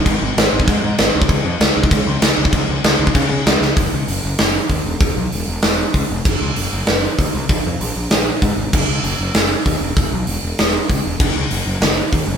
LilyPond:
<<
  \new Staff \with { instrumentName = "Picked electric bass" } { \clef bass \time 4/4 \key ges \lydian \tempo 4 = 194 aes,,8 aes,,8 aes,,8 aes,,8 aes,8 aes,8 aes,,8 des,8 | des,8 f,8 des,8 des,8 des,8 des,8 des,8 des,8 | des,8 des,8 des,8 des,8 des8 des8 des,8 des,8 | ges,,8 des,8 ges,,8 ges,,8 ges,,4 ees,8 e,,8 |
e,,8 b,,8 e,,8 e,,8 e,,4 des,8 f,,8 | ges,,8 des,8 ges,,8 ges,,8 ges,,4 ees,8 c,8 | bes,,8 f,8 bes,,8 bes,,8 bes,,4 aes,8 aes,,8 | ges,,8 des,8 ges,,8 ges,,8 ges,,4 ees,8 e,,8 |
e,,8 b,,8 e,,8 e,,8 e,,4 des,8 e,,8 | ges,,8 des,8 ges,,8 ges,,8 ges,,4 ees,8 ges,,8 | }
  \new DrumStaff \with { instrumentName = "Drums" } \drummode { \time 4/4 <cymc bd>4 <cymc sn>8. bd16 <cymc bd>4 <cymc sn>8. bd16 | <cymc bd>4 <cymc sn>8. bd16 <cymc bd>4 <cymc sn>8. bd16 | <cymc bd>4 <cymc sn>8. bd16 <cymc bd>4 <cymc sn>8 sn8 | <hho bd>4 hho4 <hho sn>4 <hho bd>4 |
<hho bd>4 hho4 <hho sn>4 <hho bd>4 | <cymc bd>4 hho4 <hho sn>4 <hho bd>4 | <hho bd>4 hho4 <hho sn>4 <hho bd>4 | <cymc bd>4 hho4 <hho sn>4 <hho bd>4 |
<hho bd>4 hho4 <hho sn>4 <hho bd>4 | <cymc bd>4 hho4 <hho sn>4 <hho bd>4 | }
>>